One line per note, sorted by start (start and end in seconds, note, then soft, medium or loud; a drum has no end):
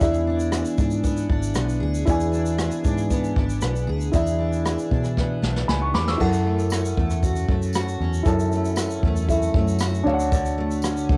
0.00 0.62 E2 medium
0.00 2.06 E3 medium
0.00 1.02 B3 medium
0.00 0.26 D4 medium
0.00 2.02 E4 medium
0.00 0.51 G#4 medium
0.00 2.03 D5 medium
0.00 2.04 E5 medium
0.00 kick medium
0.00 shaker medium
0.14 shaker soft
0.27 0.77 D4 medium
0.40 shaker soft
0.52 1.79 G#4 medium
0.52 cross-stick medium
0.52 shaker medium
0.65 shaker medium
0.78 1.26 G#2 medium
0.78 1.28 D4 medium
0.78 kick medium
0.78 shaker soft
0.91 shaker soft
1.03 1.53 B3 medium
1.03 kick medium
1.03 shaker medium
1.17 shaker soft
1.29 1.54 G#1 medium
1.29 2.31 D4 medium
1.29 kick medium
1.43 shaker soft
1.55 1.80 B1 medium
1.55 3.09 B3 medium
1.55 cross-stick loud
1.55 shaker medium
1.69 shaker soft
1.80 2.06 D2 medium
1.80 2.06 G#4 medium
1.94 shaker soft
2.05 2.69 E2 loud
2.05 4.13 E3 medium
2.05 4.09 E4 medium
2.05 2.57 G#4 medium
2.05 4.10 D5 medium
2.05 kick medium
2.05 shaker medium
2.10 4.11 G#5 medium
2.20 shaker soft
2.32 2.83 D4 medium
2.32 shaker soft
2.46 shaker soft
2.58 3.86 G#4 medium
2.58 cross-stick loud
2.58 shaker medium
2.71 shaker medium
2.85 3.33 G#2 medium
2.85 3.35 D4 medium
2.85 kick medium
2.85 shaker soft
2.98 shaker soft
3.11 3.61 B3 medium
3.11 kick medium
3.11 shaker medium
3.24 shaker soft
3.36 3.60 G#1 medium
3.36 4.37 D4 medium
3.36 kick medium
3.50 shaker soft
3.61 3.86 B1 medium
3.61 5.16 B3 medium
3.61 cross-stick medium
3.61 shaker medium
3.76 shaker soft
3.87 4.12 D2 medium
3.87 4.13 G#4 medium
4.01 shaker soft
4.12 4.75 E2 loud
4.12 6.23 E3 medium
4.12 6.15 E4 medium
4.12 4.64 G#4 medium
4.12 6.16 D5 medium
4.12 6.17 E5 medium
4.12 kick medium
4.12 shaker medium
4.27 shaker soft
4.39 4.90 D4 medium
4.53 shaker soft
4.65 5.93 G#4 medium
4.65 cross-stick loud
4.65 shaker medium
4.79 shaker medium
4.91 5.39 B2 medium
4.91 5.41 D4 medium
4.91 kick medium
5.04 cross-stick soft
5.04 shaker soft
5.17 5.68 B3 medium
5.17 kick medium
5.17 snare medium
5.42 5.66 B1 medium
5.42 6.25 D4 medium
5.42 snare medium
5.56 snare medium
5.68 5.92 C#2 medium
5.68 6.25 B3 medium
5.68 5.81 G#5 soft
5.68 5.81 B5 medium
5.68 snare medium
5.82 5.94 C#6 medium
5.94 6.18 E2 medium
5.94 6.25 G#4 medium
5.94 6.07 B5 medium
5.94 6.06 D6 medium
5.94 snare medium
6.08 6.32 C#6 soft
6.08 6.32 E6 medium
6.08 snare medium
6.17 6.93 F#2 medium
6.17 8.25 F#2 medium
6.17 8.21 E4 medium
6.17 8.22 A4 medium
6.17 8.22 F#5 medium
6.17 kick medium
6.17 crash medium
6.33 shaker soft
6.45 6.97 A3 medium
6.59 shaker soft
6.70 8.01 C#4 medium
6.70 cross-stick loud
6.70 tambourine medium
6.70 shaker medium
6.85 shaker medium
6.97 7.45 E2 medium
6.97 7.49 A3 medium
6.97 kick medium
7.10 cross-stick soft
7.10 shaker soft
7.23 7.75 F#4 medium
7.23 kick medium
7.23 shaker medium
7.36 shaker medium
7.48 7.96 F#2 medium
7.48 8.52 A3 medium
7.48 kick medium
7.62 shaker soft
7.73 9.29 F#4 medium
7.73 cross-stick loud
7.73 tambourine medium
7.73 shaker medium
7.88 shaker soft
8.00 8.24 E2 medium
8.00 8.78 C#4 medium
8.14 shaker soft
8.23 8.99 F#2 medium
8.23 10.11 F#2 medium
8.23 9.25 E4 medium
8.23 9.26 A4 medium
8.23 9.27 A5 medium
8.23 kick loud
8.23 shaker medium
8.40 shaker soft
8.52 9.05 A3 medium
8.52 shaker soft
8.65 shaker soft
8.76 10.35 C#4 medium
8.76 cross-stick loud
8.76 tambourine medium
8.76 shaker medium
8.90 shaker medium
9.03 9.50 E2 medium
9.03 9.56 A3 medium
9.03 kick medium
9.16 shaker soft
9.28 10.06 E4 medium
9.28 9.81 F#4 medium
9.28 10.06 A4 soft
9.28 10.06 E5 medium
9.28 kick medium
9.28 shaker medium
9.42 shaker medium
9.54 10.02 F#2 medium
9.54 10.57 A3 medium
9.54 kick loud
9.68 shaker medium
9.79 11.17 F#4 medium
9.79 cross-stick loud
9.79 tambourine medium
9.79 shaker medium
9.94 shaker soft
10.03 11.05 D2 loud
10.03 10.31 D3 medium
10.03 11.17 D4 medium
10.03 11.17 C#5 medium
10.03 10.13 F5 medium
10.13 11.17 F#5 medium
10.20 shaker soft
10.32 11.17 D3 medium
10.32 kick medium
10.32 shaker medium
10.45 shaker medium
10.58 11.08 A3 medium
10.71 shaker soft
10.82 11.17 C#4 medium
10.82 cross-stick loud
10.82 tambourine medium
10.82 shaker medium
10.97 shaker medium
11.09 11.17 C#2 medium
11.09 11.17 A3 medium
11.09 kick medium